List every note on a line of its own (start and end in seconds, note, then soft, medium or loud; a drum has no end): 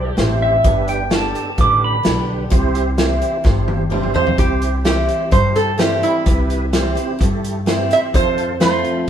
0.00 0.10 B1 medium
0.00 0.60 G2 medium
0.00 0.15 C5 medium
0.00 0.10 D5 medium
0.16 0.57 A1 medium
0.16 0.62 E3 medium
0.16 0.62 G3 medium
0.16 0.62 C4 medium
0.16 0.56 E4 medium
0.16 0.63 E4 medium
0.16 0.56 G4 medium
0.16 0.57 C5 loud
0.16 snare medium
0.16 closed hi-hat medium
0.42 0.87 E5 medium
0.64 1.33 G1 medium
0.64 1.53 G2 medium
0.64 1.03 D4 loud
0.64 1.04 G4 medium
0.64 1.04 B4 loud
0.64 kick loud
0.64 closed hi-hat medium
0.88 1.11 G5 loud
0.88 closed hi-hat medium
1.10 1.55 D3 medium
1.10 1.56 G3 medium
1.10 1.56 B3 medium
1.10 1.50 D4 medium
1.10 1.50 G4 medium
1.10 1.56 G4 medium
1.10 1.51 A4 medium
1.10 1.58 A5 medium
1.10 snare loud
1.10 closed hi-hat medium
1.35 closed hi-hat medium
1.57 1.98 A1 medium
1.57 2.02 D3 medium
1.57 1.96 D4 medium
1.57 1.97 G4 medium
1.57 1.97 B4 medium
1.57 1.82 D6 medium
1.57 kick loud
1.57 closed hi-hat medium
1.84 2.28 B5 loud
2.03 2.45 B1 medium
2.03 2.49 D3 medium
2.03 2.49 G3 medium
2.03 2.49 B3 medium
2.03 2.44 D4 medium
2.03 2.50 G4 medium
2.03 2.44 G4 medium
2.03 2.44 B4 medium
2.03 snare loud
2.03 closed hi-hat medium
2.50 3.20 C2 medium
2.50 3.40 C3 medium
2.50 2.90 E4 loud
2.50 2.90 G4 loud
2.50 2.91 C5 loud
2.50 kick loud
2.50 closed hi-hat medium
2.75 closed hi-hat medium
2.98 3.42 E3 medium
2.98 3.43 G3 medium
2.98 3.43 C4 medium
2.98 3.37 E4 medium
2.98 3.43 E4 medium
2.98 3.37 G4 medium
2.98 3.38 C5 loud
2.98 snare loud
2.98 closed hi-hat medium
3.22 closed hi-hat medium
3.44 4.13 G1 medium
3.44 4.34 G2 medium
3.44 3.84 E4 medium
3.44 3.84 G4 medium
3.44 3.84 C5 medium
3.44 kick loud
3.44 snare medium
3.68 high tom medium
3.90 4.14 E3 medium
3.90 4.14 G3 medium
3.90 4.14 C4 medium
3.90 4.30 E4 medium
3.90 4.13 E4 medium
3.90 4.30 G4 medium
3.90 4.31 C5 loud
3.90 mid tom medium
4.03 mid tom medium
4.14 4.38 C4 soft
4.14 4.37 E4 medium
4.14 4.40 C5 loud
4.14 floor tom medium
4.27 floor tom medium
4.37 5.07 C2 medium
4.37 5.28 C3 medium
4.37 4.77 E4 medium
4.37 4.77 G4 medium
4.37 4.84 G4 medium
4.37 4.78 C5 loud
4.37 kick loud
4.37 closed hi-hat medium
4.62 closed hi-hat medium
4.84 5.30 E3 medium
4.84 5.30 G3 medium
4.84 5.30 C4 medium
4.84 5.24 E4 medium
4.84 5.31 E4 medium
4.84 5.24 G4 medium
4.84 5.29 G4 medium
4.84 5.25 C5 medium
4.84 snare loud
4.84 closed hi-hat medium
5.09 closed hi-hat medium
5.31 6.21 G2 medium
5.31 6.01 G2 medium
5.31 5.71 E4 medium
5.31 5.72 G4 medium
5.31 5.57 C5 loud
5.31 5.72 C5 medium
5.31 kick loud
5.31 closed hi-hat medium
5.56 5.79 A4 medium
5.56 closed hi-hat medium
5.78 6.23 E3 medium
5.78 6.24 G3 medium
5.78 6.24 C4 medium
5.78 6.18 E4 medium
5.78 6.24 E4 loud
5.78 6.04 G4 medium
5.78 6.18 G4 medium
5.78 6.19 C5 medium
5.78 snare loud
5.78 closed hi-hat medium
6.03 6.69 E4 medium
6.03 closed hi-hat medium
6.26 6.95 C2 medium
6.26 7.15 C3 medium
6.26 6.65 E4 loud
6.26 6.66 G4 medium
6.26 6.66 B4 loud
6.26 kick loud
6.26 closed hi-hat medium
6.50 closed hi-hat medium
6.73 6.96 E3 medium
6.73 6.96 G3 medium
6.73 6.96 C4 medium
6.73 7.12 E4 medium
6.73 6.94 E4 medium
6.73 7.13 G4 medium
6.73 7.13 C5 loud
6.73 snare loud
6.73 closed hi-hat medium
6.95 7.20 C4 soft
6.95 7.19 E4 medium
6.95 closed hi-hat medium
7.19 8.09 G2 medium
7.19 7.89 G2 medium
7.19 7.59 E4 medium
7.19 7.59 G4 medium
7.19 7.60 A4 medium
7.19 kick loud
7.19 closed hi-hat medium
7.44 closed hi-hat medium
7.66 8.11 E3 medium
7.66 8.12 G3 medium
7.66 8.12 C4 medium
7.66 8.06 E4 medium
7.66 8.12 E4 medium
7.66 8.07 G4 medium
7.66 8.07 C5 loud
7.66 snare loud
7.66 closed hi-hat medium
7.91 7.99 E5 loud
7.91 closed hi-hat medium
8.14 8.83 F2 medium
8.14 9.03 F2 medium
8.14 8.53 F4 loud
8.14 8.54 A4 medium
8.14 8.60 C5 loud
8.14 8.54 C5 loud
8.14 kick loud
8.14 closed hi-hat medium
8.38 closed hi-hat medium
8.60 9.05 F3 medium
8.60 9.05 A3 medium
8.60 9.06 C4 medium
8.60 9.00 F4 medium
8.60 9.06 F4 medium
8.60 9.00 A4 medium
8.60 9.10 C5 medium
8.60 9.01 B5 medium
8.60 snare loud
8.60 closed hi-hat medium
8.84 closed hi-hat soft